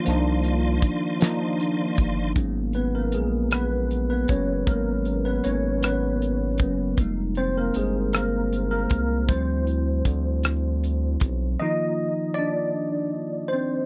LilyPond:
<<
  \new Staff \with { instrumentName = "Tonewheel organ" } { \time 6/8 \key aes \lydian \tempo 4. = 52 <ees d'' f'' c'''>2. | r2. | r2. | r2. |
r2. | r2. | }
  \new Staff \with { instrumentName = "Tine electric piano" } { \time 6/8 \key aes \lydian <f bes d' ees'>4. <f bes d' ees'>4. | r8 <ces' ces''>16 <bes bes'>16 <aes aes'>8 <ces' ces''>8. <ces' ces''>16 des''8 | <bes bes'>8. <ces' ces''>16 <des' des''>8 <ces' ces''>4 r8 | r8 <c' c''>16 <bes bes'>16 <aes aes'>8 <bes bes'>8. <bes bes'>8. |
c''2~ c''8 r8 | <ees' ees''>4 <d' d''>4. <c' c''>8 | }
  \new Staff \with { instrumentName = "Tine electric piano" } { \time 6/8 \key aes \lydian r2. | <ges bes ces' des'>4. r4 <ges bes ces' des'>8 | <ges aes ces' des'>2~ <ges aes ces' des'>8 <ges bes ces' des'>8 | <g aes bes ees'>8 r2 r8 |
<f g c' e'>8 r2 r8 | <ees f bes f'>2. | }
  \new Staff \with { instrumentName = "Analog synth bass" } { \clef bass \time 6/8 \key aes \lydian c,4 g,,8 r4 g,,8 | aes,,4 bes,,4. ges,,8 | aes,,4 aes,,4. ges,,8 | f,,4 g,,4. c,8 |
d,4 d,4. b,,8 | r2. | }
  \new DrumStaff \with { instrumentName = "Drums" } \drummode { \time 6/8 hh8 hh8 <hh bd>8 <hh sn>8 hh8 <hh bd>8 | <hh bd>8 hh8 hh8 <hh ss>8 hh8 <hh bd>8 | <hh bd>8 hh8 hh8 <hh ss>8 hh8 <hh bd>8 | <hh bd>8 hh8 hh8 <hh ss>8 hh8 <hh bd>8 |
<hh bd>8 hh8 <hh bd>8 <hh ss>8 hh8 <hh bd>8 | r4. r4. | }
>>